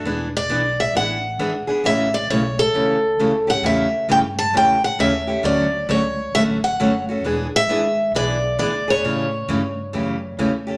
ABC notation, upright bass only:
X:1
M:4/4
L:1/8
Q:"Swing" 1/4=133
K:Amix
V:1 name="Upright bass" clef=bass
E,,,2 B,,,2 A,,,2 ^G,,, z | A,,,2 B,,,2 C,,2 D,,2 | E,, z G,,2 E,, z _E,,2 | D,,2 C,,2 A,,,2 F,,,2 |
E,,, z ^G,,,2 B,,,2 D,,2 | A,,2 G,,2 F,,2 E,,2 |]